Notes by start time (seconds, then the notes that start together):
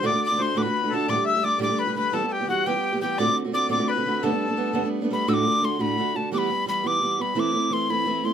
0.03 D2 A2 D3 A3 D4 F#4 D5 D6
0.12 D3 A3 D4 F#4
0.22 D5 D6
0.30 D3 A3 D4 F#4
0.38 D3 A3 D4 F#4 C5
0.42 C6
0.55 D2 A2 D3 A3 D4 F#4 B4 D6
0.62 D4 F#4 B5
0.67 D3 A3
0.83 D3 A3 D4 F#4
0.90 D3 A3 D4 A4
0.94 F#4 A5
1.07 D2 A2 D3 G3 A3 G4 D5 D6
1.16 D3 G3 A3 G4
1.25 E5 E6
1.35 D3 G3 A3 G4
1.43 D3 G3 A3 G4 D5 D6
1.59 D2 A2 D3 G3 A3 G4 D5 D6
1.69 D3 G3 A3 G4
1.79 B4 B5
1.87 D3 G3 A3 G4
1.95 D3 G3 A3 G4 B4 B5
2.12 E3 G3 B3 G4 A4 A5
2.22 G3 B3 G4
2.28 A4
2.32 G4 G5
2.40 G3 B3 G4
2.47 E3 G3 B3 F#4 G4 F#5
2.66 E3 G3 B3 G4 G5
2.74 G3 B3 G4
2.92 G3 B3 G4
3.01 E3 G3 B3 G4 G5
3.18 D2 A2 D3 A3 C4 F#4 D5 D6
3.28 D3 A3 C4
3.45 D3 A3 C4 F#4
3.52 D3 A3 C4 F#4 D5 D6
3.69 D2 A2 D3 A3 C4 F#4 D5 D6
3.79 D3 A3 C4 F#4
3.88 B4 B5
3.96 D3 A3 C4 F#4
4.06 D3 A3 C4 F#4
4.22 G2 D3 G3 A3 B3 D4 A4 A5
4.32 G3 A3 B3 D4
4.48 G3 A3 B3 D4
4.57 G3 A3 B3 D4
4.73 G2 D3 G3 A3 B3 D4
4.84 G3 A3 B3 D4
5.02 G3 A3 B3 D4
5.11 G3 A3 B3 D4 B5
5.27 D2 A2 D3 A3 D4 F#4 E6
5.34 D6
5.47 D3 A3 D4
5.61 D3 A3 D4 F#4 C6
5.79 D2 A2 D3 A3 D4 F#4 B5
5.98 D3 A3 D4 F#4
6.15 D3 A3 D4 F#4 A5
6.32 E3 G3 B3 G4 D6
6.38 B5
6.50 G3 B3 G4
6.66 E3 G3 B3 G4 B5
6.84 E3 G3 B3 G4 D6
7.02 E3 G3 B3 G4
7.18 G3 B3 G4 B5
7.35 E3 A3 C4 E4
7.40 D6
7.53 A3 C4 E4
7.70 E3 A3 C4 E4 C6
7.89 E3 A3 C4 E4 B5
8.06 E3 A3 C4 E4
8.23 A3 C4 E4 C6